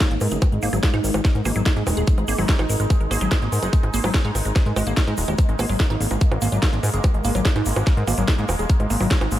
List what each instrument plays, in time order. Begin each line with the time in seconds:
Already playing: synth texture G#3 D#4
0.01 kick, snare, closed hi-hat, high bongo
0.11 analog synth bass G#1, synth arpeggio sound A#3, closed hi-hat
0.21 analog synth bass G#2, synth arpeggio sound A#4, open hi-hat, high bongo, shaker
0.31 analog synth bass F#1, synth arpeggio sound G#4, closed hi-hat, shaker
0.41 kick, closed hi-hat, high bongo, shaker
0.52 analog synth bass G#1, synth arpeggio sound G#3, closed hi-hat
0.62 analog synth bass G#1, synth arpeggio sound A#3, open hi-hat, shaker
0.73 analog synth bass G#1, synth arpeggio sound F#3, closed hi-hat, high bongo, shaker
0.83 kick, snare, closed hi-hat, shaker
0.94 analog synth bass G#2, synth arpeggio sound D#4, closed hi-hat, high bongo
1.04 analog synth bass G#1, synth arpeggio sound A#4, open hi-hat, shaker
1.14 analog synth bass G#1, synth arpeggio sound G#3, closed hi-hat, high bongo, shaker
1.25 kick, snare, closed hi-hat, shaker
1.35 analog synth bass G#2, synth arpeggio sound A#4, closed hi-hat
1.45 analog synth bass G#1, synth arpeggio sound A#3, open hi-hat, high bongo, shaker
1.55 analog synth bass G#1, synth arpeggio sound F#3, closed hi-hat, shaker
1.66 kick, snare, closed hi-hat, high bongo, shaker
1.76 analog synth bass G#2, synth arpeggio sound A#3, closed hi-hat
1.87 analog synth bass D#1, synth arpeggio sound A#4, open hi-hat, high bongo, shaker
1.97 analog synth bass D#1, synth arpeggio sound G#4, closed hi-hat, shaker
2.07 kick, closed hi-hat, shaker
2.18 analog synth bass G#1, synth arpeggio sound G#3, closed hi-hat, high bongo
2.28 analog synth bass G#1, synth arpeggio sound A#3, open hi-hat, shaker
2.38 analog synth bass G#1, synth arpeggio sound F#3, open hi-hat, high bongo, shaker
2.48 kick, snare, closed hi-hat, shaker
2.59 analog synth bass G#1, synth arpeggio sound D#4, closed hi-hat, high bongo
2.69 analog synth bass G#1, synth arpeggio sound A#4, open hi-hat, shaker
2.80 analog synth bass G#1, synth arpeggio sound G#3, closed hi-hat, shaker
2.90 kick, closed hi-hat, high bongo, shaker
3.01 analog synth bass G#1, synth arpeggio sound A#4, closed hi-hat
3.11 analog synth bass G#1, synth arpeggio sound A#3, open hi-hat, high bongo, shaker
3.21 analog synth bass G#1, synth arpeggio sound F#3, closed hi-hat, shaker
3.32 kick, snare, closed hi-hat, high bongo, shaker
3.42 analog synth bass G#1, synth arpeggio sound A#3, closed hi-hat
3.52 analog synth bass G#2, synth arpeggio sound A#4, open hi-hat, shaker
3.62 analog synth bass F#1, synth arpeggio sound G#4, closed hi-hat, high bongo, shaker
3.73 kick, closed hi-hat, shaker
3.83 analog synth bass G#1, synth arpeggio sound G#3, closed hi-hat, high bongo
3.94 analog synth bass G#1, synth arpeggio sound A#3, open hi-hat, shaker
4.04 analog synth bass G#1, synth arpeggio sound F#3, open hi-hat, high bongo, shaker
4.14 kick, snare, shaker
4.25 analog synth bass G#2, synth arpeggio sound D#4, closed hi-hat
4.35 analog synth bass G#1, synth arpeggio sound A#4, open hi-hat, high bongo, shaker
4.45 analog synth bass G#1, synth arpeggio sound G#3, closed hi-hat, shaker
4.55 kick, snare, closed hi-hat, high bongo, shaker
4.66 analog synth bass G#2, synth arpeggio sound A#4, closed hi-hat
4.76 analog synth bass G#1, synth arpeggio sound G#3, open hi-hat, high bongo, shaker
4.87 analog synth bass G#1, synth arpeggio sound A#3, closed hi-hat, shaker
4.97 kick, snare, closed hi-hat, shaker
5.07 analog synth bass G#2, synth arpeggio sound G#3, closed hi-hat, high bongo
5.17 analog synth bass D#1, synth arpeggio sound G#3, open hi-hat, shaker
5.28 analog synth bass D#1, synth arpeggio sound G#3, closed hi-hat, high bongo, shaker
5.38 synth texture A#3, kick, closed hi-hat, high bongo, shaker
5.49 analog synth bass G#1, synth arpeggio sound G#3, closed hi-hat
5.59 analog synth bass G#1, synth arpeggio sound A#3, open hi-hat, high bongo, shaker
5.70 analog synth bass G#1, synth arpeggio sound F#3, open hi-hat, shaker
5.80 kick, snare, shaker
5.90 analog synth bass G#1, synth arpeggio sound D#4, closed hi-hat, high bongo
6.01 analog synth bass G#1, synth arpeggio sound A#3, open hi-hat, shaker
6.11 analog synth bass G#1, synth arpeggio sound G#3, closed hi-hat, high bongo, shaker
6.21 kick, closed hi-hat, shaker
6.32 analog synth bass G#1, synth arpeggio sound A#4, closed hi-hat, high bongo
6.41 analog synth bass G#1, synth arpeggio sound A#3, open hi-hat, shaker
6.52 analog synth bass G#1, synth arpeggio sound F#3, closed hi-hat, shaker
6.63 kick, snare, closed hi-hat, high bongo, shaker
6.73 analog synth bass G#1, synth arpeggio sound A#3, closed hi-hat
6.83 analog synth bass G#2, synth arpeggio sound A#4, open hi-hat, high bongo, shaker
6.93 analog synth bass F#1, synth arpeggio sound G#4, closed hi-hat, shaker
7.03 kick, closed hi-hat, high bongo, shaker
7.14 analog synth bass G#1, synth arpeggio sound G#3, closed hi-hat
7.24 analog synth bass G#1, synth arpeggio sound A#3, open hi-hat, shaker
7.35 analog synth bass G#1, synth arpeggio sound F#3, closed hi-hat, high bongo, shaker
7.45 kick, snare, closed hi-hat, shaker
7.56 analog synth bass G#2, synth arpeggio sound D#4, closed hi-hat, high bongo
7.65 analog synth bass G#1, synth arpeggio sound A#3, open hi-hat, shaker
7.76 analog synth bass G#1, synth arpeggio sound G#3, closed hi-hat, high bongo, shaker
7.86 kick, snare, closed hi-hat, shaker
7.97 analog synth bass G#2, synth arpeggio sound A#4, closed hi-hat
8.07 analog synth bass G#1, synth arpeggio sound A#3, open hi-hat, high bongo, shaker
8.17 analog synth bass G#1, synth arpeggio sound F#3, closed hi-hat, shaker
8.28 kick, snare, closed hi-hat, high bongo, shaker
8.38 analog synth bass G#2, synth arpeggio sound A#3, closed hi-hat
8.49 analog synth bass D#1, synth arpeggio sound A#4, open hi-hat, high bongo, shaker
8.59 analog synth bass D#1, synth arpeggio sound G#4, closed hi-hat, shaker
8.69 kick, closed hi-hat, shaker
8.80 analog synth bass G#1, synth arpeggio sound G#3, closed hi-hat, high bongo
8.90 analog synth bass G#1, synth arpeggio sound A#3, open hi-hat, shaker
9.01 analog synth bass G#1, synth arpeggio sound F#3, open hi-hat, high bongo, shaker
9.11 kick, snare, shaker
9.21 analog synth bass G#1, synth arpeggio sound D#4, closed hi-hat, high bongo
9.31 analog synth bass G#1, synth arpeggio sound A#3, open hi-hat, shaker